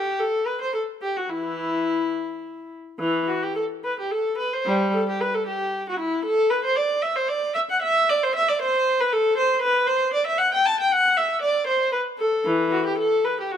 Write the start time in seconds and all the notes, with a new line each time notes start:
Already playing: G4
0.20 A4
0.46 B4
0.61 C5
0.74 A4
1.02 G4
1.17 F#4
1.30 E3 E4
2.99 E3
3.27 F#4
3.43 G4
3.56 A4
3.84 B4
3.99 G4
4.11 A4
4.38 B4
4.53 C5
4.66 G3
4.94 A4
5.09 G4
5.21 B4
5.34 A4
5.47 G4
5.89 F#4
5.99 E4
6.25 A4
6.50 B4
6.64 C5
6.76 D5
7.02 E5
7.16 C5
7.28 D5
7.54 E5
7.70 F#5
7.82 E5
8.09 D5
8.23 C5
8.35 E5
8.48 D5
8.62 C5
9.00 B4
9.12 A4
9.37 C5
9.62 B4
9.87 C5
10.13 D5
10.26 E5
10.38 F#5
10.54 G5
10.66 A5
10.80 G5
10.92 F#5
11.17 E5
11.42 D5
11.67 C5
11.92 B4
12.19 A4
12.46 E3
12.71 F#4
12.86 G4
12.98 A4
13.24 B4
13.40 G4
13.51 F#4